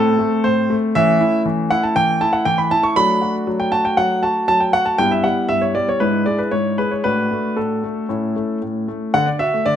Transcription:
0.00 0.18 A2 medium
0.00 0.17 A3 medium
0.00 0.91 C4 medium
0.00 0.44 A4 loud
0.19 0.43 A3 medium
0.44 0.69 A2 medium
0.44 0.75 C5 loud
0.70 0.94 A3 medium
0.95 1.20 E3 medium
0.95 2.93 A3 medium
0.95 2.93 C#4 medium
0.95 1.40 E5 loud
1.21 1.45 E4 medium
1.46 1.70 E3 medium
1.71 1.95 E4 medium
1.71 1.83 F#5 loud
1.83 1.96 A5 medium
1.96 2.20 E3 medium
1.96 2.21 G5 loud
2.21 2.46 E4 medium
2.21 2.33 A5 loud
2.33 2.46 F#5 medium
2.45 2.71 E3 medium
2.45 2.58 G5 loud
2.58 2.71 B5 medium
2.71 2.96 E4 medium
2.71 2.84 A5 loud
2.83 2.96 C#6 medium
2.96 3.21 F#3 medium
2.96 4.94 A3 medium
2.96 4.94 D4 medium
2.96 3.34 B5 loud
3.21 3.46 F#4 medium
3.47 3.72 F#3 medium
3.60 3.72 G5 medium
3.72 3.97 F#4 medium
3.72 3.85 A5 loud
3.85 3.98 G5 medium
3.97 4.22 F#3 medium
3.97 4.23 F#5 loud
4.23 4.47 F#4 medium
4.23 4.47 A5 loud
4.48 4.73 F#3 medium
4.48 4.61 A5 loud
4.60 4.73 G5 medium
4.73 4.98 F#4 medium
4.73 4.86 F#5 loud
4.86 4.98 A5 medium
4.98 5.23 G2 medium
4.98 5.96 B3 medium
4.98 5.96 E4 medium
4.98 5.11 G5 loud
5.11 5.24 E5 medium
5.24 5.48 G3 medium
5.24 5.49 F#5 medium
5.49 5.73 G2 medium
5.49 5.61 E5 loud
5.62 5.74 C#5 medium
5.75 5.99 G3 medium
5.75 5.87 D5 medium
5.89 6.01 C#5 medium
6.00 6.25 G#2 medium
6.00 7.00 D4 soft
6.00 7.00 E4 soft
6.00 6.23 B4 medium
6.26 6.51 G#3 medium
6.26 6.39 D5 medium
6.38 6.52 B4 medium
6.51 6.77 G#2 medium
6.51 6.78 C#5 medium
6.78 7.04 G#3 medium
6.78 6.91 B4 medium
6.91 7.04 C#5 medium
7.04 7.30 A2 medium
7.04 8.06 D4 soft
7.04 8.06 F#4 soft
7.04 7.57 B4 loud
7.31 7.56 A3 medium
7.57 7.82 A2 medium
7.57 8.57 A4 medium
7.84 8.09 A3 medium
8.09 8.35 A2 medium
8.09 9.10 C#4 soft
8.09 9.10 E4 soft
8.36 8.61 A3 medium
8.62 8.88 A2 medium
8.88 9.14 A3 medium
9.14 9.27 D3 medium
9.14 9.27 F#5 loud
9.26 9.41 D4 medium
9.26 9.40 D5 medium
9.39 9.54 F#4 medium
9.39 9.66 E5 loud
9.54 9.67 A3 medium
9.66 9.76 D3 medium
9.66 9.76 D5 loud

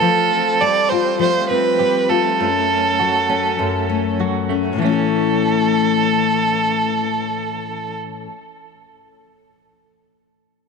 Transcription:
0.00 1.18 F3 medium
0.00 2.41 F3 medium
0.00 0.64 A3 medium
0.00 0.65 A3 medium
0.00 0.61 A4 medium
0.00 0.62 A4 medium
0.00 2.40 A4 medium
0.32 0.90 C4 medium
0.60 1.79 G3 medium
0.60 1.78 G4 medium
0.60 0.90 D5 medium
0.89 1.49 C4 medium
0.89 2.08 F4 medium
0.89 1.19 C5 medium
1.19 2.46 F3 medium
1.19 2.09 A3 medium
1.19 1.48 C5 medium
1.49 2.46 C4 soft
1.49 2.11 B4 medium
1.79 2.46 G3 medium
1.79 2.46 G4 medium
2.09 2.39 A3 medium
2.09 2.46 F4 soft
2.09 4.19 A4 medium
2.40 3.58 F#2 medium
2.40 3.58 A3 medium
2.40 4.92 A4 medium
2.70 3.29 C#4 soft
3.00 4.18 F#3 medium
3.00 4.19 F#4 medium
3.29 4.50 C#4 soft
3.29 3.89 C#4 medium
3.59 4.72 F#2 medium
3.59 4.49 A3 soft
3.89 4.82 A3 soft
3.89 4.84 C#4 soft
4.20 4.81 F#3 soft
4.20 4.87 F#4 medium
4.49 4.81 A3 soft
4.49 4.86 C#4 soft
4.73 8.25 A2 medium
4.77 8.29 E3 medium
4.77 8.30 E3 medium
4.77 7.96 A4 medium
4.82 8.33 A3 medium
4.82 8.36 C#4 medium
4.86 8.37 C#4 medium
4.86 8.41 E4 medium
4.92 8.44 A4 medium

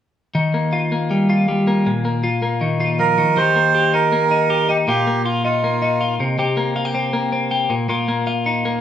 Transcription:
0.35 2.27 D#3 medium
0.54 0.92 A#3 soft
0.73 1.29 F4 medium
0.92 1.67 A#3 soft
1.11 1.47 G3 medium
1.30 2.23 F4 medium
1.48 1.90 G3 medium
1.67 2.04 A#3 medium
1.86 3.22 A#2 medium
2.05 2.42 A#3 soft
2.24 2.80 F4 medium
2.42 3.55 A#3 medium
2.61 3.18 D#3 medium
2.80 3.40 F4 medium
2.99 3.40 F3 medium
2.99 3.38 A#4 medium
3.18 3.36 D#3 medium
3.37 4.87 D#3 medium
3.37 3.73 G4 medium
3.37 3.95 C5 loud
3.56 4.12 A#3 soft
3.75 4.49 G4 medium
3.94 4.31 D#4 medium
3.94 4.71 A#4 medium
4.12 5.07 A#3 medium
4.31 4.69 D#4 soft
4.50 4.88 G4 medium
4.69 4.92 D#4 medium
4.69 4.77 G4 medium
4.88 6.20 A#2 medium
4.88 5.24 F4 medium
4.88 5.23 G4 medium
5.07 5.63 A#3 soft
5.25 5.43 F4 medium
5.25 6.00 F4 medium
5.44 5.82 D#4 medium
5.44 6.15 F4 medium
5.64 6.42 A#3 medium
5.82 6.79 D#4 medium
6.01 6.23 F4 medium
6.20 6.37 C3 medium
6.39 7.69 C3 medium
6.39 6.76 G4 medium
6.57 7.13 A#3 soft
6.76 6.85 F4 medium
6.85 7.50 G4 medium
6.94 7.31 C4 medium
7.13 8.08 A#3 medium
7.32 7.74 C4 soft
7.51 7.74 G4 medium
7.70 7.88 A#2 medium
7.89 8.81 A#2 medium
7.89 8.27 F4 medium
8.08 8.65 A#3 medium
8.27 8.81 F4 medium
8.46 8.81 D#4 medium
8.65 8.81 A#3 medium

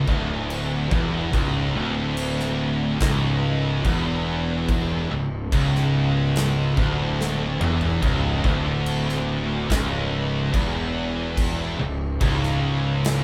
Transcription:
0.07 0.87 D1 loud
0.07 0.90 D2 loud
0.07 kick loud
0.50 crash medium
0.90 1.30 E1 loud
0.90 1.31 E2 loud
0.90 kick loud
1.32 1.72 C#1 loud
1.32 1.75 C#2 loud
1.32 kick loud
1.32 crash medium
1.75 2.97 D1 loud
1.75 2.99 D2 loud
2.17 crash medium
2.40 snare soft
3.00 3.81 C#1 loud
3.00 3.83 C#2 loud
3.00 kick loud
3.00 snare loud
3.00 crash medium
3.85 5.06 E1 loud
3.85 5.09 E2 loud
3.85 kick medium
3.85 crash medium
4.69 kick loud
4.69 crash medium
5.10 5.49 C#1 medium
5.10 5.43 C#2 medium
5.52 6.74 C#1 medium
5.52 6.76 C#2 loud
5.52 kick loud
5.52 crash medium
5.75 snare soft
6.36 snare loud
6.36 crash medium
6.77 7.57 D1 loud
6.77 7.60 D2 loud
6.77 kick loud
7.21 snare medium
7.60 7.99 E1 loud
7.60 8.02 E2 loud
7.60 mid tom loud
7.81 floor tom medium
8.02 8.42 C#1 loud
8.02 8.44 C#2 loud
8.02 kick loud
8.02 crash medium
8.44 9.66 D1 loud
8.44 9.69 D2 loud
8.44 kick loud
8.86 crash medium
9.09 snare soft
9.70 10.50 C#1 medium
9.70 10.53 C#2 loud
9.70 kick loud
9.70 snare loud
9.70 crash medium
10.53 11.75 E1 medium
10.53 11.78 E2 loud
10.53 kick loud
10.53 crash medium
11.37 kick loud
11.37 crash medium
11.79 12.18 C#1 medium
11.79 12.13 C#2 medium
12.20 13.24 C#1 loud
12.20 13.24 C#2 loud
12.20 kick loud
12.20 crash medium
12.43 snare soft
13.04 snare loud
13.04 crash medium

